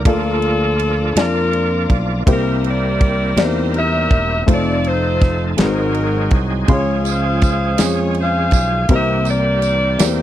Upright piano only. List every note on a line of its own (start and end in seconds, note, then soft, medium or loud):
0.05 1.13 D3 medium
0.05 1.06 A#3 medium
0.05 1.06 D4 medium
0.05 1.06 F4 medium
0.05 1.06 A4 medium
0.05 1.07 D5 medium
1.15 2.16 A#3 medium
1.15 2.17 D4 medium
1.15 2.17 F4 medium
1.15 2.17 D5 medium
1.15 2.17 A5 medium
2.26 3.34 C3 medium
2.26 3.27 A#3 medium
2.26 3.27 C4 medium
2.26 3.27 E4 medium
2.26 3.28 G4 medium
2.26 3.28 C5 medium
3.36 4.37 A#3 medium
3.36 4.37 C4 medium
3.36 3.44 D#4 medium
3.36 4.38 G4 medium
3.36 4.38 D5 medium
3.44 4.41 E4 medium
4.46 5.47 A3 medium
4.46 5.47 C4 medium
4.46 5.48 D#4 medium
4.46 5.48 F4 medium
4.46 5.48 C5 medium
5.57 6.65 G#2 medium
5.57 6.58 G#3 medium
5.57 6.58 C4 medium
5.57 6.58 D#4 medium
5.57 6.59 F#4 medium
5.57 5.65 B4 medium
5.65 6.62 C5 medium
6.67 7.75 C#3 medium
6.67 7.68 G#3 medium
6.67 7.69 C#4 medium
6.67 7.69 F4 medium
6.67 7.69 C6 medium
7.77 8.78 G#3 medium
7.77 8.79 C#4 medium
7.77 8.79 F4 medium
7.77 8.79 G#4 medium
8.88 9.96 C3 medium
8.88 9.89 A#3 medium
8.88 9.89 C4 medium
8.88 9.90 E4 medium
8.88 9.90 G4 medium
8.88 9.90 C5 medium
9.98 10.22 A#3 medium
9.98 10.22 C4 medium
9.98 10.22 E4 medium
9.98 10.22 G4 medium
9.98 10.22 D5 medium